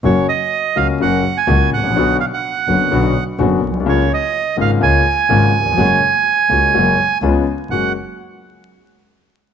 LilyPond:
<<
  \new Staff \with { instrumentName = "Bandoneon" } { \time 4/4 \key fis \major \tempo 4 = 126 cis''8 dis''4 eis''8 fis''8. gis''8. fis''8~ | fis''8 eis''16 fis''2 r4 r16 | cis''8 dis''4 eis''8 gis''2~ | gis''2. r4 |
fis''8 r2. r8 | }
  \new Staff \with { instrumentName = "Grand piano" } { \clef bass \time 4/4 \key fis \major <fis, cis fis ais fis'>8 r4 <cis, cis fis ais fis'>8 <fis, cis fis ais fis'>8 r8 <cis, cis fis ais fis'>8 r32 gis,,32 a,,32 ais,,32 | <b,, b, d fis b fis'>8 r4 <fis,, fis, d fis b fis'>8 <b,, b, d fis b fis'>8 r8 <fis,, fis, d fis b fis'>8 r32 ais,,32 b,,32 bis,,32 | <cis, cis gis ais eis'>8 r4 <gis,, gis, cis gis ais eis'>8 <cis, cis gis ais eis'>8 r8 <gis,, gis, cis gis ais eis'>8 r32 dis,32 e,32 eis,32 | <fis, cis fis gis ais fis'>8 r4 <cis, cis gis ais fis'>8 <fis, cis fis gis ais fis'>8 r8 <cis, cis gis b eis'>8 r8 |
<fis, gis ais fis'>8 r2. r8 | }
  \new Staff \with { instrumentName = "Double bass" } { \clef bass \time 4/4 \key fis \major fis,,8 r4 cis,8 fis,,8 r8 cis,8 a,,8 | b,,8 r4 fis,,8 b,,8 r8 fis,,8 b,,8 | cis,8 r4 gis,,8 cis,8 r8 gis,,8 r8 | fis,,8 r4 cis,8 fis,,8 r8 cis,8 r8 |
fis,,8 r2. r8 | }
>>